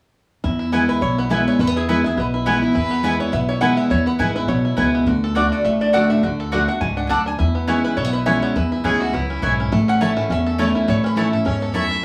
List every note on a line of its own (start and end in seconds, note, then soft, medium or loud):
0.44 0.99 E2 medium
0.44 0.86 E2 medium
0.44 0.59 E4 medium
0.59 0.72 E4 medium
0.72 1.00 E3 medium
0.72 1.00 G#3 medium
0.72 0.83 B3 medium
0.72 1.01 B3 medium
0.72 0.88 E4 medium
0.72 0.83 E4 medium
0.72 1.01 E4 medium
0.72 0.83 B4 loud
0.72 0.83 G#5 loud
0.89 1.02 E4 medium
0.89 1.01 B4 medium
1.01 1.44 B1 medium
1.01 1.57 B2 medium
1.01 1.31 E4 medium
1.01 1.18 C#5 loud
1.18 1.60 B3 medium
1.18 1.32 B4 medium
1.29 1.58 E3 medium
1.29 1.58 G#3 medium
1.29 1.41 B3 medium
1.29 1.58 B3 medium
1.29 1.41 E4 medium
1.29 1.59 E4 medium
1.29 1.47 E4 medium
1.29 1.41 B4 medium
1.29 1.47 E5 medium
1.29 1.41 G#5 medium
1.48 1.76 E4 medium
1.48 1.60 C#5 medium
1.59 2.15 E2 medium
1.59 2.01 E2 medium
1.59 1.67 A3 medium
1.59 1.77 B4 loud
1.67 1.89 B3 medium
1.76 1.89 E4 medium
1.76 2.03 G#4 medium
1.89 2.04 E3 medium
1.89 2.04 G#3 medium
1.89 1.99 B3 medium
1.89 2.04 B3 loud
1.89 1.99 E4 loud
1.89 2.04 E4 medium
1.89 2.03 E4 medium
1.89 1.99 B4 loud
1.89 1.99 G#5 medium
2.04 2.18 B3 medium
2.04 2.34 E4 medium
2.04 2.17 E4 medium
2.04 2.17 G#4 medium
2.17 2.59 B1 medium
2.17 2.73 B2 medium
2.17 2.46 B3 medium
2.17 2.60 B4 medium
2.34 2.62 E4 medium
2.46 2.61 E3 medium
2.46 2.62 G#3 medium
2.46 2.56 B3 medium
2.46 2.90 B3 medium
2.46 2.62 B3 medium
2.46 2.77 E4 medium
2.46 2.56 E4 medium
2.46 2.61 E4 medium
2.46 2.57 B4 loud
2.46 2.57 G#5 loud
2.62 2.75 B3 medium
2.62 2.75 E4 medium
2.62 2.74 E4 medium
2.74 3.30 E2 medium
2.74 3.17 E2 loud
2.74 3.03 E4 medium
2.74 3.12 B4 loud
2.91 3.30 B3 medium
3.03 3.31 E3 medium
3.03 3.31 G#3 medium
3.03 3.14 B3 medium
3.03 3.32 B3 medium
3.03 3.14 E4 loud
3.03 3.19 E4 medium
3.03 3.32 E4 loud
3.03 3.14 B4 loud
3.03 3.14 G#5 loud
3.20 3.48 E4 medium
3.20 3.33 C#5 medium
3.32 3.75 B1 medium
3.32 3.88 B2 medium
3.32 3.75 B3 medium
3.32 3.48 E5 loud
3.49 3.60 E4 medium
3.49 3.61 C#5 medium
3.61 3.89 E3 medium
3.61 3.89 G#3 medium
3.61 3.72 B3 medium
3.61 3.89 B3 loud
3.61 3.89 E4 medium
3.61 3.72 E4 loud
3.61 3.90 E4 loud
3.61 3.72 B4 loud
3.61 3.77 F#5 loud
3.61 3.72 G#5 loud
3.77 4.05 B3 medium
3.77 3.91 E5 loud
3.90 4.12 E2 loud
3.90 4.46 E2 medium
3.90 4.18 E4 medium
3.90 4.07 C#5 loud
4.06 4.46 B3 medium
4.06 4.34 B4 loud
4.19 4.44 A1 medium
4.19 4.47 E3 medium
4.19 4.48 G#3 medium
4.19 4.29 B3 medium
4.19 4.48 B3 medium
4.19 4.30 E4 medium
4.19 4.34 E4 medium
4.19 4.48 E4 medium
4.19 4.30 B4 medium
4.19 4.30 G#5 loud
4.36 4.64 E4 medium
4.36 4.49 B4 medium
4.48 4.74 B1 medium
4.48 5.04 B2 medium
4.48 4.90 B3 medium
4.48 4.90 C#5 medium
4.65 4.76 E4 medium
4.77 5.02 C#2 medium
4.77 5.05 E3 medium
4.77 5.05 G#3 medium
4.77 4.87 B3 medium
4.77 5.06 B3 loud
4.77 4.87 E4 medium
4.77 5.07 E4 medium
4.77 5.06 E4 medium
4.77 4.88 B4 medium
4.77 4.88 G#5 medium
4.95 5.07 B3 medium
5.06 5.49 D2 medium
5.06 5.34 D3 medium
5.06 5.49 F#4 medium
5.24 5.63 A4 medium
5.35 5.63 D3 medium
5.35 5.45 A3 medium
5.35 5.64 A3 medium
5.35 5.78 D4 medium
5.35 5.64 D4 medium
5.35 5.46 F#4 medium
5.35 5.64 F#4 loud
5.35 5.46 D5 loud
5.35 5.46 F#5 loud
5.52 5.91 F#4 medium
5.52 5.65 D5 medium
5.65 6.07 A1 medium
5.65 6.21 A2 medium
5.65 6.07 A3 medium
5.65 5.82 E5 medium
5.81 6.09 D4 medium
5.81 5.93 D5 medium
5.93 6.22 D3 medium
5.93 6.03 A3 medium
5.93 6.22 A3 loud
5.93 6.23 D4 loud
5.93 6.04 F#4 medium
5.93 6.23 F#4 loud
5.93 6.36 A4 medium
5.93 6.04 D5 medium
5.93 6.04 F#5 loud
5.93 6.09 F#5 loud
6.10 6.49 D4 medium
6.10 6.22 E5 medium
6.23 6.65 D2 medium
6.23 6.52 D3 medium
6.23 6.65 F#4 medium
6.40 6.79 A4 medium
6.52 6.68 D3 medium
6.52 6.62 A3 medium
6.52 6.68 A3 medium
6.52 6.94 D4 medium
6.52 6.68 D4 medium
6.52 6.62 F#4 loud
6.52 6.67 F#4 loud
6.52 6.62 D5 medium
6.52 6.62 F#5 loud
6.68 6.81 D4 soft
6.68 7.07 F#4 medium
6.68 6.81 F#4 medium
6.68 6.80 F#5 medium
6.81 7.06 C#2 medium
6.81 7.09 G#2 medium
6.81 7.23 A3 medium
6.81 6.97 G#5 medium
6.97 7.25 D4 medium
6.97 7.07 F#5 medium
7.07 7.35 D2 medium
7.07 7.38 F#2 medium
7.07 7.20 A3 medium
7.07 7.20 F#4 medium
7.07 7.39 A4 medium
7.07 7.20 D5 loud
7.07 7.20 F#5 loud
7.07 7.10 G#5 medium
7.07 7.27 A5 loud
7.26 7.39 D4 medium
7.26 7.39 G#5 medium
7.39 7.95 E2 medium
7.39 7.82 E2 medium
7.39 7.68 E4 medium
7.55 7.95 B3 medium
7.67 7.96 E3 medium
7.67 7.96 G#3 medium
7.67 7.78 B3 medium
7.67 7.96 C#4 medium
7.67 7.78 E4 loud
7.67 7.84 E4 medium
7.67 7.97 E4 loud
7.67 7.78 C#5 loud
7.67 7.78 G#5 medium
7.84 8.14 E4 medium
7.84 7.96 B4 medium
7.97 8.40 B1 medium
7.97 8.53 B2 medium
7.97 8.05 A3 medium
7.97 8.13 C#5 loud
8.05 8.27 B3 medium
8.13 8.26 E4 medium
8.13 8.25 B4 medium
8.26 8.54 E3 medium
8.26 8.54 G#3 loud
8.26 8.36 B3 loud
8.26 8.54 C#4 medium
8.26 8.36 E4 medium
8.26 8.55 E4 medium
8.26 8.55 E4 loud
8.26 8.36 C#5 loud
8.26 8.43 E5 loud
8.26 8.37 G#5 medium
8.42 8.82 B3 medium
8.42 8.56 C#5 medium
8.56 9.11 E2 medium
8.56 8.77 E2 medium
8.56 8.71 E4 medium
8.56 9.39 B4 medium
8.72 9.01 E4 medium
8.84 9.09 D2 medium
8.84 9.12 E3 medium
8.84 9.12 G#3 medium
8.84 8.94 B3 medium
8.84 9.27 C#4 medium
8.84 9.13 C#4 medium
8.84 8.94 E4 medium
8.84 9.13 E4 medium
8.84 9.01 G#4 loud
8.84 8.95 C#5 medium
8.84 8.95 G#5 loud
9.00 9.41 E4 medium
9.00 9.15 F#4 medium
9.13 9.38 C#2 medium
9.13 9.41 F#2 medium
9.13 9.56 B3 medium
9.13 9.72 E4 medium
9.30 9.59 C#4 medium
9.42 9.67 B1 medium
9.42 9.70 G#2 medium
9.42 9.52 B3 medium
9.42 9.53 E4 medium
9.42 9.72 E4 medium
9.42 9.53 C#5 medium
9.42 9.53 G#5 medium
9.60 9.72 C#4 medium
9.72 10.14 A1 loud
9.72 10.27 A2 medium
9.72 10.14 A3 medium
9.88 10.27 C#4 medium
9.88 10.01 F#5 loud
10.01 10.29 E3 medium
10.01 10.11 A3 medium
10.01 10.29 A3 medium
10.01 10.29 C#4 medium
10.01 10.11 E4 medium
10.01 10.75 E4 medium
10.01 10.29 E4 loud
10.01 10.11 C#5 loud
10.01 10.29 E5 loud
10.01 10.11 A5 loud
10.17 10.56 A3 medium
10.30 10.85 E2 medium
10.30 10.72 E2 medium
10.30 10.72 C#4 medium
10.30 10.61 E5 loud
10.46 10.86 A4 medium
10.58 10.86 E3 medium
10.58 10.69 A3 medium
10.58 10.87 A3 medium
10.58 10.87 A3 loud
10.58 10.87 C#4 medium
10.58 10.69 E4 loud
10.58 10.87 E4 loud
10.58 10.69 C#5 loud
10.58 10.88 C#5 medium
10.58 10.69 A5 loud
10.75 11.17 E4 medium
10.88 11.30 A1 loud
10.88 11.43 A2 medium
10.88 11.30 A3 medium
10.88 11.05 C#5 loud
11.04 11.43 C#4 medium
11.04 11.18 B4 medium
11.16 11.32 E3 medium
11.16 11.32 A3 medium
11.16 11.27 A3 medium
11.16 11.32 C#4 loud
11.16 11.27 E4 medium
11.16 11.59 E4 medium
11.16 11.30 E4 medium
11.16 11.72 A4 medium
11.16 11.27 C#5 loud
11.16 11.27 A5 medium
11.31 11.45 C#4 medium
11.31 11.44 E4 medium
11.31 11.61 A4 medium
11.45 11.88 E2 medium
11.45 11.73 G#2 medium
11.45 11.88 C#4 medium
11.45 11.72 C#5 medium
11.62 12.01 A4 medium
11.74 12.02 F#2 medium
11.74 11.84 A3 loud
11.74 11.85 E4 medium
11.74 12.04 E4 medium
11.74 11.85 C#5 loud
11.74 12.05 E5 loud
11.74 11.85 A5 loud
11.91 12.02 A3 medium